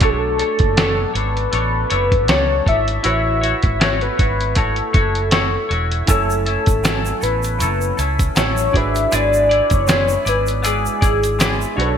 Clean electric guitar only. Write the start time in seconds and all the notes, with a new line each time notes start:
0.01 B2 F#3 A3 D4 A4 C#5
0.38 A3 D4 A4 C#5
0.77 B2 F#3 A3 D4 A4 C#5
1.14 A3 D4 A4 C#5
1.52 A3 D4 A4 C#5
1.90 A3 D4 A4 C#5
2.28 B2 F#3 A3 D4 A4 C#5
2.66 A3 D4 A4 C#5
3.03 A3 E4 F#4 C#5
3.41 E4 F#4 C#5
3.80 A3 E4 F#4 C#5
4.18 E4 F#4 C#5
4.55 A3 E4 F#4 C#5
4.93 E4 F#4 C#5
5.31 A3 E4 F#4 C#5
5.69 E4 F#4 C#5
6.08 F#3 C#4 E4 A4
6.46 C#4 E4 A4
6.84 F#3 C#4 E4 A4
7.21 C#4 E4 A4
7.59 F#3 C#4 E4 A4
7.97 C#4 E4 A4
8.36 F#3 C#4 E4 A4
8.73 E4 G#4 D5
9.11 G#3 B3 E4 G#4 D5
9.49 E4 G#4 D5
9.88 G#3 B3 E4 G#4
10.25 E4 G#4 D5
10.62 B3 E4 G#4 D5
11.01 E4 G#4 D5
11.39 G#3 B3 E4 G#4 D5
11.77 A3 D4 F#4 C#5